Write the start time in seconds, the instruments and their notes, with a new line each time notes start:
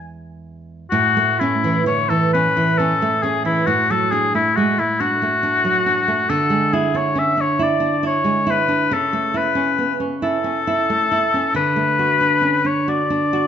Already playing: nylon-string guitar E2 G#3 B3, oboe G#5
0.91 nylon-string guitar A2, oboe F#4
1.17 nylon-string guitar A3
1.39 nylon-string guitar C#4, oboe E4
1.64 nylon-string guitar E3
1.86 nylon-string guitar D3, oboe C#5
2.10 nylon-string guitar E3, oboe A4
2.33 nylon-string guitar C#4, oboe B4
2.57 nylon-string guitar E3
2.78 nylon-string guitar C#4, oboe A4
3.02 nylon-string guitar A3
3.23 nylon-string guitar C#4, oboe G#4
3.45 nylon-string guitar E3, oboe E4
3.66 nylon-string guitar A2, oboe F#4
3.90 nylon-string guitar F#3, oboe A4
4.11 nylon-string guitar D4, oboe G#4
4.34 nylon-string guitar A3, oboe E4
4.56 nylon-string guitar G#3, oboe F#4
4.79 nylon-string guitar A3, oboe E4
5.00 nylon-string guitar D4, oboe F#4
5.22 nylon-string guitar A3
5.43 nylon-string guitar D4
5.65 nylon-string guitar F#3
5.86 nylon-string guitar D4
6.08 nylon-string guitar A3
6.30 nylon-string guitar D3, oboe A4
6.50 nylon-string guitar G#3
6.73 nylon-string guitar E4, oboe G#4
6.94 nylon-string guitar D4, oboe C#5
7.15 nylon-string guitar C#4, oboe E5
7.37 nylon-string guitar D4, oboe C#5
7.59 nylon-string guitar E4, oboe D5
7.80 nylon-string guitar D4
8.03 nylon-string guitar E4, oboe C#5
8.24 nylon-string guitar G#3
8.47 nylon-string guitar E4
8.51 oboe B4
8.68 nylon-string guitar D4
8.91 nylon-string guitar C#3, oboe A4
9.13 nylon-string guitar A3
9.34 nylon-string guitar E4, oboe B4
9.55 nylon-string guitar C#4
9.79 nylon-string guitar B3
10.00 nylon-string guitar C#4
10.22 nylon-string guitar E4, oboe A4
10.44 nylon-string guitar C#4
10.67 nylon-string guitar E4
10.90 nylon-string guitar A3
11.12 nylon-string guitar E4
11.34 nylon-string guitar C#4
11.54 nylon-string guitar D3, oboe B4
11.76 nylon-string guitar A3
11.99 nylon-string guitar F#4
12.21 nylon-string guitar D4
12.41 nylon-string guitar C#4
12.65 nylon-string guitar D4, oboe C#5
12.88 nylon-string guitar F#4, oboe D5
13.10 nylon-string guitar D4
13.33 nylon-string guitar F#4